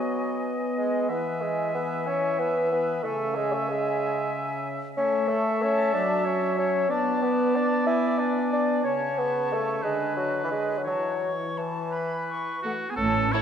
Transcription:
Already playing: F#3 B3 F#4 D#5 G#5
0.77 G#3 G#4
1.09 E3 B3 B4 E5 G#5
1.41 G#3 G#4
1.74 B3 B4
2.06 C#4 C#5
2.39 B3 B4
2.72 B3 B4
3.04 C#3 A3 A4 E5 G#5
3.36 G#3 G#4
3.52 A3 A4
3.69 G#3 G#4
4.96 A3 C#4 C#5 E5 A5
5.28 A3 A4
5.61 C#4 C#5
5.93 F#3 D4 D5
6.24 C#4 C#5
6.58 C#4 C#5
6.89 B3 D4 D5 A5
7.22 B3 B4
7.55 D4 D5
7.87 E4 E5 G#5
8.18 D4 D5
8.53 D4 D5
8.84 C#3 C#4 C#5 A5
9.18 B3 B4
9.53 A3 A4
9.82 D3 G#3 G#4 B4
10.16 F#3 F#4
10.44 E3 E4
10.51 G#3 G#4
10.77 F#3 F#4
10.85 E3 F#3 F#4 C#5 A5
11.23 C#6
11.58 E3 E4 A5
11.91 B4 B5
12.29 C#6
12.62 A3 F#4 F#5
12.90 B3 G#4 G#5
12.96 A1 A2 E3 C#4 A4 A5
13.32 A3 E4 A4 C#5 C#6

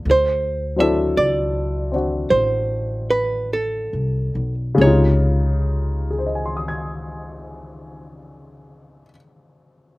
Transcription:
0.05 D2
0.11 C5
0.76 F#3 C4 D4 E4 E5
0.81 A4
1.17 C#2 D5
1.92 C4 D4 F#4
2.30 A1 C5
3.10 B4
3.53 A4
3.93 C2
4.35 B1
4.75 C#2 C#3 G#3
4.80 C3 D#4 C#5
4.87 F4
6.10 G#4
6.19 C5
6.26 D#5
6.35 G#5
6.46 C6
6.57 D#6
6.68 G#6

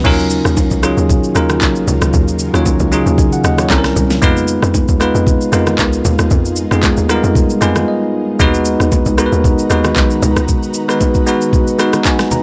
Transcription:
Already playing: F#3
0.04 D#2 C#3 D#3 F#3 A#3 C#4 D#4 F4 A#4, kick, crash, low conga
0.19 shaker
0.30 shaker
0.45 D#2, cross-stick, shaker
0.57 kick, high bongo, shaker
0.71 C#2, kick, shaker
0.83 F#3 C#4 D#4 F4 G#4, cross-stick, shaker
0.97 D#2, shaker
1.09 kick, high bongo, low conga, shaker
1.24 shaker
1.35 D#2 F#3 C#4 D#4 F4 A#4, cross-stick, shaker
1.50 cross-stick, low bongo, shaker
1.61 A#1, kick, clap, high bongo, shaker
1.76 shaker
1.87 C#2, low bongo, low conga, shaker
2.02 C#2, cross-stick, shaker
2.14 D#2, kick, low conga, shaker
2.28 shaker
2.39 shaker
2.53 D#2 F#3 C#4 D#4 F4 C#5, cross-stick, shaker
2.66 kick, high bongo, shaker
2.80 C#2, kick, shaker
2.91 F#3 C#4 D#4 F4 G#4, shaker
3.06 D#2, shaker
3.18 G#5, kick, high bongo, low conga, shaker
3.33 F#5, shaker
3.44 D#2 D#5 F#5, cross-stick, shaker
3.58 C#5, cross-stick, low bongo, shaker
3.70 C2 G3 C4 C#4 E4 A4 A#5, kick, clap, high bongo, shaker
3.78 A#4
3.84 cross-stick, snare, shaker
3.96 C2, low bongo, low conga, shaker
4.10 snare, shaker
4.22 F2 G#3 B3 D#4 F4 B4, kick, low conga, shaker
4.37 shaker
4.48 shaker
4.62 F2, cross-stick, shaker
4.74 kick, high bongo, shaker
4.88 D#2, kick, shaker
5.00 G#3 B3 D#4 F4 B4, cross-stick, shaker
5.15 F2, shaker
5.26 kick, high bongo, low conga, shaker
5.41 shaker
5.52 F2 G#3 B3 D#4 F4 A#4, cross-stick, shaker
5.67 cross-stick, low bongo, shaker
5.79 C#2, kick, clap, high bongo, shaker
5.93 shaker
6.05 D#2, low bongo, low conga, shaker
6.19 D#2, cross-stick, shaker
6.31 F2, kick, low conga, shaker
6.45 shaker
6.56 shaker
6.71 F2 G#3 B3 D#4 F4 G#4, cross-stick, shaker
6.83 kick, clap, high bongo, shaker
6.97 D#2, shaker
7.09 G3 B3 D#4 F4 A#4, cross-stick, shaker
7.15 G#3
7.24 F2, shaker
7.35 kick, high bongo, low conga, shaker
7.50 shaker
7.61 F2 G#3 B3 D#4 F4 B4 G#5, cross-stick, shaker
7.76 cross-stick, low bongo, shaker
7.88 D#5
8.39 D#2 D#3 G#3 B3 D#4 F#4 B4 A#5, kick, low conga, shaker
8.54 shaker
8.65 shaker
8.80 D#2, cross-stick, shaker
8.92 kick, high bongo, shaker
9.06 C#2, kick, shaker
9.17 G#3 B3 D#4 F#4 A#4, cross-stick, shaker
9.26 B4
9.32 D#2, shaker
9.44 kick, high bongo, low conga, shaker
9.59 shaker
9.70 D#2 G#3 B3 D#4 F#4 B4, cross-stick, shaker
9.84 cross-stick, low bongo, shaker
9.96 B1, kick, clap, high bongo, shaker
10.10 shaker
10.22 C#2, low bongo, low conga, shaker
10.36 C#2, cross-stick, shaker
10.48 kick, low conga, shaker
10.63 shaker
10.74 shaker
10.88 G#3 B3 D#4 F#4 B4, cross-stick, shaker
11.01 kick, high bongo, shaker
11.15 kick, shaker
11.26 G#3 B3 D#4 F#4 B4, shaker
11.41 shaker
11.53 kick, high bongo, low conga, shaker
11.67 shaker
11.78 G#3 B3 D#4 F#4 B4 F#5, cross-stick, shaker
11.93 cross-stick, low bongo, shaker
12.05 G#5, kick, clap, high bongo, shaker
12.19 cross-stick, snare, shaker
12.31 A#5, low bongo, low conga, shaker

